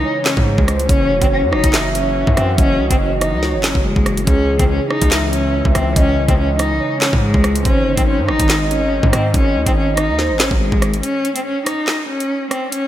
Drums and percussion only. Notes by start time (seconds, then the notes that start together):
0.25 snare, clap, closed hi-hat
0.37 kick
0.58 kick
0.68 cross-stick, closed hi-hat
0.80 closed hi-hat
0.89 kick, closed hi-hat
1.22 kick, closed hi-hat
1.53 cross-stick
1.64 kick, closed hi-hat
1.73 snare, clap, closed hi-hat
1.95 closed hi-hat
2.27 kick
2.37 cross-stick, closed hi-hat
2.58 kick, closed hi-hat
2.91 kick, closed hi-hat
3.21 cross-stick, closed hi-hat
3.43 snare
3.64 snare, clap, closed hi-hat
3.75 kick
3.96 kick
4.06 cross-stick, closed hi-hat
4.17 closed hi-hat
4.27 kick, closed hi-hat
4.59 kick, closed hi-hat
4.91 cross-stick
5.02 kick, closed hi-hat
5.11 snare, clap, closed hi-hat
5.33 closed hi-hat
5.65 kick
5.75 cross-stick, closed hi-hat
5.96 kick, closed hi-hat
6.29 kick, closed hi-hat
6.59 cross-stick, closed hi-hat
7.01 snare, clap, closed hi-hat
7.13 kick
7.34 kick
7.44 cross-stick, closed hi-hat
7.55 closed hi-hat
7.65 kick, closed hi-hat
7.97 kick, closed hi-hat
8.29 cross-stick
8.39 kick, closed hi-hat
8.49 snare, clap, closed hi-hat
8.71 closed hi-hat
9.03 kick
9.13 cross-stick, closed hi-hat
9.34 kick, closed hi-hat
9.66 kick, closed hi-hat
9.97 cross-stick, closed hi-hat
10.19 snare
10.39 snare, clap, closed hi-hat
10.51 kick
10.72 kick
10.82 cross-stick, closed hi-hat
10.94 closed hi-hat
11.03 closed hi-hat
11.25 closed hi-hat
11.36 closed hi-hat
11.66 cross-stick, closed hi-hat
11.87 snare, clap
12.20 closed hi-hat
12.51 cross-stick, closed hi-hat
12.72 closed hi-hat